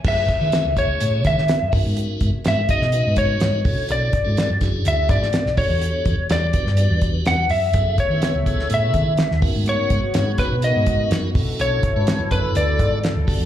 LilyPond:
<<
  \new Staff \with { instrumentName = "Lead electric guitar" } { \time 4/4 \key b \major \tempo 4 = 125 e''4. cis''4 e''4 r8 | r4 e''8 dis''4 cis''4. | d''4. r8 e''8 d''4 cis''8~ | cis''4 d''4. r8 fis''8 e''8~ |
e''8 cis''4. e''4. r8 | cis''4. b'8 dis''4 r4 | cis''4. b'8 d''4 r4 | }
  \new Staff \with { instrumentName = "Tonewheel organ" } { \time 4/4 \key b \major <a cis' e' gis' b'>8 r16 <a cis' e' gis' b'>8 r16 <a cis' e' gis' cis''>4. r8 <b cis' dis' fis' ais'>8~ | <b cis' dis' fis' ais'>8. r16 <b cis' dis' fis' ais'>16 r16 <b cis' dis' fis' gis'>16 r16 <b cis' dis' fis' b'>4. <cis' d' e' fis' a'>8~ | <cis' d' e' fis' a'>8 r16 <cis' d' e' fis' a'>8 r16 <cis' d' e' fis' gis'>4. r8 <b d' fis' g' a'>8~ | <b d' fis' g' a'>8. r16 <b d' fis' g' a'>16 r16 <b d' fis' g' b'>16 r16 <b d' fis' g' b'>4. r8 |
<b cis' e' gis' a'>8 r16 <b cis' e' gis' b'>8 r16 <b cis' e' gis' a'>4. r8 <b cis' dis' fis' ais'>8~ | <b cis' dis' fis' ais'>8. r16 <b cis' dis' fis' gis'>16 r16 <b cis' dis' fis' cis''>16 r16 <b cis' dis' fis' ais'>4. <cis' d' e' fis' a'>8~ | <cis' d' e' fis' a'>8 r16 <cis' d' e' fis' b'>8 r16 <b d' e' fis' a'>4. r8 <b d' fis' g' a'>8 | }
  \new Staff \with { instrumentName = "Analog synth pad" } { \time 4/4 \key b \major << { r1 | r1 | r1 | r1 |
<a b e''>2.~ <a b e''>8 <b fis'>8~ | <b fis'>2.~ <b fis'>8 <e' a'>8~ | <e' a'>2.~ <e' a'>8 <g fis''>8 | } \\ { r1 | r1 | r1 | r1 |
a,2.~ a,8 cis8~ | cis2.~ cis8 d8~ | d1 | } >> }
  \new Staff \with { instrumentName = "Fingered electric bass" } { \clef bass \time 4/4 \key b \major fis,8 r16 dis8 cis,8. a,8 dis8. fis,16 r16 gis,16~ | gis,16 r16 gis,16 r16 gis,8 r16 b,8 gis,8. gis,8 b,,16 r16 | b,,8 r16 gis,8 fis,8. d,8 gis,8. b,,16 r16 e,16~ | e,16 r16 e,16 r16 e,8 r16 g,8 e,8. e,8 fis,8 |
fis,8 r16 dis8 cis,8. a,8 dis8. dis,16 r16 gis,16~ | gis,16 r16 gis,16 r16 gis,8 r16 b,8 gis,8. fis,8 b,,16 r16 | b,,8 r16 gis,8 fis,8. d,8 gis,8. d,16 r16 e,16 | }
  \new DrumStaff \with { instrumentName = "Drums" } \drummode { \time 4/4 <cymc bd>8 <hh bd>8 <hh sn>8 <hh bd>8 hh8 <hh bd>16 sn16 <hh sn>8 <hho bd>8 | hh8 <hh bd>8 <hh sn>8 <hh bd>16 sn16 hh8 <hh bd>8 <hh sn>8 <hho bd>8 | hh8 <hh bd>8 <hh sn>8 <hh bd sn>8 hh8 <hh bd>16 sn16 <hh sn>16 sn16 <hho bd>8 | hh8 <hh bd>8 <hh sn>8 <hh bd>16 sn16 hh8 <hh bd>8 <hh sn>8 hho8 |
<hh bd>8 <hh bd>8 <hh sn>8 <hh bd>16 sn16 hh8 <hh bd>8 <hh sn>16 sn16 <hho bd>8 | hh8 <hh bd>8 <hh sn>8 <hh bd sn>8 hh8 <hh bd>8 <hh sn>8 <hho bd>8 | hh8 <hh bd>8 <hh sn>8 <hh bd>8 hh8 <hh bd>8 <hh sn>8 <hho bd>8 | }
>>